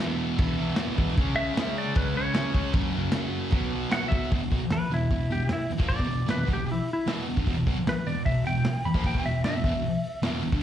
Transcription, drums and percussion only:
0.38 kick loud
0.38 crash medium
0.76 snare loud
0.76 crash medium
0.98 kick medium
1.08 snare soft
1.17 kick loud
1.17 crash medium
1.57 snare loud
1.57 crash medium
1.95 kick loud
1.95 crash medium
2.35 snare loud
2.35 crash medium
2.54 kick medium
2.73 kick loud
2.73 crash medium
3.12 snare loud
3.12 crash medium
3.50 kick loud
3.50 crash medium
3.92 snare loud
3.92 crash medium
4.12 kick loud
4.23 snare soft
4.32 kick loud
4.32 open hi-hat medium
4.52 kick loud
4.52 open hi-hat medium
4.70 snare loud
4.70 open hi-hat medium
4.92 open hi-hat medium
5.11 kick medium
5.11 open hi-hat medium
5.32 open hi-hat medium
5.49 snare loud
5.49 open hi-hat medium
5.71 open hi-hat medium
5.80 kick loud
5.90 kick loud
5.90 open hi-hat medium
6.00 kick medium
6.11 open hi-hat medium
6.29 snare loud
6.29 open hi-hat medium
6.48 kick medium
6.48 open hi-hat medium
6.68 open hi-hat medium
6.88 open hi-hat medium
7.08 snare loud
7.08 open hi-hat medium
7.29 open hi-hat medium
7.37 kick loud
7.47 kick loud
7.47 open hi-hat medium
7.67 kick loud
7.67 open hi-hat medium
7.87 snare loud
7.87 open hi-hat medium
8.08 open hi-hat medium
8.26 kick medium
8.26 open hi-hat medium
8.46 open hi-hat medium
8.65 snare loud
8.65 open hi-hat medium
8.73 snare soft
8.84 open hi-hat medium
8.94 kick loud
9.04 kick loud
9.04 open hi-hat medium
9.15 kick medium
9.25 open hi-hat medium
9.44 snare loud
9.44 open hi-hat medium
9.64 kick medium
9.64 open hi-hat medium
9.85 open hi-hat medium
10.04 open hi-hat medium
10.23 snare loud
10.23 open hi-hat medium
10.42 open hi-hat medium
10.52 kick loud

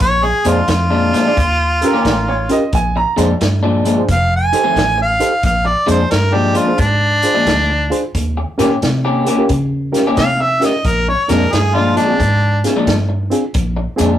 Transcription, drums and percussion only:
0.00 kick loud
0.00 closed hi-hat medium
0.45 closed hi-hat medium
0.68 snare loud
0.68 closed hi-hat medium
1.14 snare soft
1.14 closed hi-hat medium
1.37 kick loud
1.37 closed hi-hat medium
1.82 closed hi-hat medium
2.05 kick medium
2.05 snare loud
2.05 closed hi-hat medium
2.49 closed hi-hat medium
2.73 kick loud
2.73 closed hi-hat medium
3.18 closed hi-hat medium
3.41 snare loud
3.41 closed hi-hat medium
3.85 closed hi-hat medium
4.09 kick loud
4.09 closed hi-hat medium
4.53 closed hi-hat medium
4.76 kick medium
4.76 snare loud
4.76 closed hi-hat medium
5.20 closed hi-hat medium
5.43 kick loud
5.43 closed hi-hat medium
5.88 closed hi-hat medium
6.11 snare loud
6.11 closed hi-hat medium
6.55 closed hi-hat medium
6.78 kick loud
6.78 closed hi-hat medium
7.22 closed hi-hat medium
7.47 kick medium
7.47 snare loud
7.47 closed hi-hat medium
7.92 closed hi-hat medium
8.15 kick loud
8.15 closed hi-hat medium
8.59 snare soft
8.59 closed hi-hat medium
8.82 snare loud
8.82 closed hi-hat medium
9.26 closed hi-hat medium
9.49 kick loud
9.49 closed hi-hat medium
9.94 snare soft
9.94 closed hi-hat medium
10.17 kick medium
10.17 snare loud
10.17 closed hi-hat medium
10.62 snare soft
10.62 closed hi-hat medium
10.85 kick loud
10.85 closed hi-hat medium
11.29 snare soft
11.29 closed hi-hat medium
11.53 snare loud
11.53 closed hi-hat medium
11.97 closed hi-hat medium
12.20 kick loud
12.20 closed hi-hat medium
12.64 snare soft
12.64 closed hi-hat medium
12.87 kick medium
12.87 snare loud
12.87 closed hi-hat medium
13.31 closed hi-hat medium
13.54 kick loud
13.54 closed hi-hat medium
13.98 closed hi-hat medium

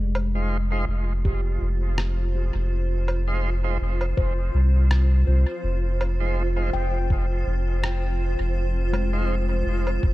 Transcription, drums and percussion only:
0.15 low woodblock medium
1.25 kick loud
1.98 cross-stick medium
3.08 low woodblock medium
4.01 low woodblock medium
4.18 kick loud
4.91 cross-stick medium
6.01 low woodblock medium
7.10 kick loud
7.84 cross-stick medium
8.94 low woodblock medium
9.87 low woodblock medium
10.03 kick loud

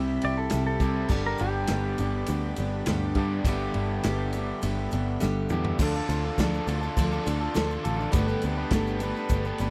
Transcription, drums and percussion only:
0.21 ride medium
0.50 snare loud
0.50 ride medium
0.50 shaker loud
0.80 kick medium
0.80 ride medium
0.80 shaker medium
1.08 kick loud
1.08 crash medium
1.08 shaker medium
1.38 ride medium
1.38 shaker medium
1.67 snare loud
1.67 ride loud
1.67 shaker medium
1.98 ride medium
1.98 shaker medium
2.26 ride loud
2.26 shaker medium
2.56 ride medium
2.56 shaker medium
2.86 snare loud
2.86 ride loud
2.86 shaker medium
3.15 kick medium
3.15 ride medium
3.45 kick loud
3.45 ride loud
3.45 shaker loud
3.74 ride medium
4.03 snare loud
4.03 ride medium
4.03 shaker medium
4.33 ride medium
4.33 shaker medium
4.62 ride loud
4.62 shaker medium
4.91 ride medium
4.91 shaker medium
5.21 snare medium
5.21 shaker loud
5.49 mid tom medium
5.49 shaker medium
5.64 floor tom loud
5.79 kick loud
5.79 crash loud
5.79 shaker loud
5.94 shaker soft
6.09 ride medium
6.09 shaker medium
6.38 kick medium
6.38 snare loud
6.38 ride loud
6.38 shaker loud
6.54 shaker soft
6.67 ride medium
6.67 shaker medium
6.82 shaker soft
6.97 kick medium
6.97 ride loud
6.97 shaker loud
7.12 shaker soft
7.26 ride medium
7.26 shaker medium
7.55 snare loud
7.55 ride loud
7.55 shaker loud
7.70 shaker soft
7.85 ride medium
7.85 shaker medium
8.00 shaker soft
8.13 kick loud
8.13 ride loud
8.13 shaker loud
8.28 shaker soft
8.42 ride medium
8.42 shaker medium
8.70 kick medium
8.70 snare loud
8.70 ride loud
8.70 shaker loud
8.87 shaker soft
9.00 ride medium
9.00 shaker medium
9.16 shaker soft
9.29 kick medium
9.29 ride loud
9.29 shaker loud
9.44 shaker soft
9.58 ride medium
9.58 shaker medium

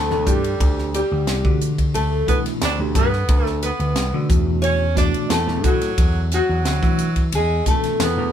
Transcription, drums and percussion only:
0.10 snare soft
0.27 kick medium
0.27 hi-hat pedal medium
0.27 ride medium
0.44 ride medium
0.61 kick loud
0.61 ride medium
0.78 snare soft
0.94 hi-hat pedal medium
0.94 ride medium
1.27 snare medium
1.27 ride medium
1.45 kick medium
1.61 hi-hat pedal medium
1.61 ride medium
1.78 kick medium
1.78 ride medium
1.95 ride medium
2.28 kick medium
2.28 hi-hat pedal medium
2.28 ride medium
2.46 snare soft
2.46 ride medium
2.62 snare loud
2.62 ride medium
2.95 kick medium
2.95 hi-hat pedal medium
2.95 ride medium
3.13 snare soft
3.29 kick loud
3.29 ride medium
3.46 snare soft
3.62 hi-hat pedal medium
3.62 ride medium
3.80 ride medium
3.96 snare medium
3.96 ride medium
4.30 kick loud
4.30 hi-hat pedal medium
4.30 ride medium
4.64 ride medium
4.97 kick medium
4.97 snare soft
4.97 hi-hat pedal medium
4.97 ride medium
5.14 ride medium
5.30 snare loud
5.30 ride medium
5.48 snare soft
5.64 kick medium
5.64 hi-hat pedal medium
5.64 ride medium
5.81 snare soft
5.81 ride medium
5.98 kick loud
5.98 ride medium
6.32 snare soft
6.32 hi-hat pedal medium
6.32 ride medium
6.65 snare medium
6.65 ride medium
6.83 kick medium
6.83 snare soft
6.99 hi-hat pedal medium
6.99 ride medium
7.16 kick medium
7.16 ride medium
7.32 ride medium
7.66 kick medium
7.66 snare soft
7.66 hi-hat pedal medium
7.66 ride medium
7.84 snare soft
7.84 ride medium
8.00 snare loud
8.00 ride medium

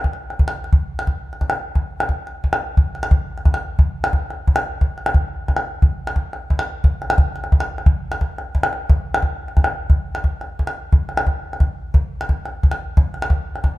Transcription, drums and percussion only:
0.04 calabash thump medium
0.04 calabash click soft
0.13 calabash click soft
0.30 calabash click soft
0.39 calabash thump medium
0.48 calabash click soft
0.64 calabash click soft
0.73 calabash thump medium
0.99 calabash click soft
1.07 calabash thump medium
1.33 calabash click soft
1.41 calabash thump medium
1.41 calabash click soft
1.50 calabash click soft
1.75 calabash thump medium
2.00 calabash click soft
2.09 calabash thump medium
2.27 calabash click soft
2.44 calabash thump medium
2.53 calabash click soft
2.77 calabash thump medium
2.95 calabash click soft
3.03 calabash click soft
3.11 calabash thump medium
3.38 calabash click soft
3.45 calabash thump medium
3.45 calabash click soft
3.54 calabash click soft
3.79 calabash thump medium
4.04 calabash click soft
4.13 calabash thump medium
4.30 calabash click soft
4.47 calabash thump medium
4.56 calabash click soft
4.81 calabash thump medium
4.98 calabash click soft
5.06 calabash click soft
5.14 calabash thump medium
5.48 calabash thump medium
5.48 calabash click soft
5.57 calabash click soft
5.82 calabash thump medium
6.07 calabash click soft
6.16 calabash thump medium
6.33 calabash click soft
6.50 calabash thump medium
6.59 calabash click soft
6.84 calabash thump medium
7.02 calabash click soft
7.10 calabash click medium
7.18 calabash thump medium
7.36 calabash click soft
7.44 calabash click soft
7.52 calabash thump medium
7.60 calabash click medium
7.78 calabash click soft
7.86 calabash thump medium
8.12 calabash click soft
8.21 calabash thump medium
8.38 calabash click soft
8.55 calabash thump medium
8.63 calabash click medium
8.73 calabash click soft
8.89 calabash thump medium
9.14 calabash click soft
9.22 calabash thump medium
9.48 calabash click soft
9.57 calabash thump medium
9.57 calabash click soft
9.64 calabash click soft
9.90 calabash thump medium
10.15 calabash click soft
10.24 calabash thump medium
10.41 calabash click soft
10.59 calabash thump medium
10.67 calabash click soft
10.92 calabash thump medium
11.09 calabash click soft
11.17 calabash click soft
11.27 calabash thump medium
11.53 calabash click soft
11.60 calabash thump medium
11.60 calabash click soft
11.94 calabash thump medium
12.21 calabash click soft
12.29 calabash thump medium
12.46 calabash click soft
12.63 calabash thump medium
12.71 calabash click soft
12.97 calabash thump medium
13.14 calabash click soft
13.22 calabash click medium
13.30 calabash thump medium
13.56 calabash click soft
13.64 calabash thump medium
13.64 calabash click soft

